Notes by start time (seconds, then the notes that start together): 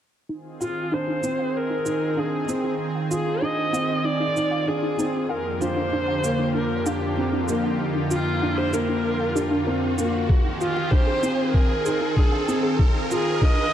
0.29 D#3 C4 D#4 F4 G#4, riser
0.61 F4 F5, shaker
0.92 D4 D#4 C5
1.08 D#4
1.23 C4, shaker
1.39 F5
1.57 A#4
1.70 D#4
1.85 D#4, shaker
2.17 D4 G#4 F5
2.48 C4 D#4, shaker
2.64 D#4
2.95 F5
3.11 F4 G#4, shaker
3.27 D#4
3.42 D4 D#4 D#5
3.73 C4 F5, shaker
4.04 D#4 D5
4.20 D#4
4.36 D#4, shaker
4.51 F5
4.67 D4 G#4
4.83 D#4
4.98 C4 D#4, shaker
5.29 F2 D3 A#3 G4 A#4 F5
5.61 D4 F4 C5, shaker
5.77 D4
5.93 D4
6.08 F5
6.24 A#3, shaker
6.39 D4
6.55 D4 A#4
6.86 D4 G4 F5, shaker
7.17 C4 D4
7.33 D4
7.48 A#3, shaker
7.64 F5
7.96 D4
8.11 D4 F4, shaker
8.42 D4 F5
8.58 C5
8.73 A#3 D4 A#4, shaker
8.89 D4
9.20 F5
9.35 D4 G4, shaker
9.51 D4
9.67 C4 A#4
9.98 A#3 D4, shaker
10.29 D#3 C4 G#4, kick
10.45 D#4
10.61 F4, shaker
10.76 F5, mid tom
10.91 D4 C5, kick
11.07 G#4
11.23 C4 D#4, shaker
11.52 A#4 F5, kick, mid tom
11.85 D#4 G#4, shaker
12.01 D#4
12.16 D4 G#4, kick
12.32 F5, mid tom
12.48 C4, shaker
12.63 G#4
12.79 D#4 F4, kick
13.10 F4 G#4 F5, mid tom, shaker
13.41 D4 G#4 D#5, kick
13.57 D#4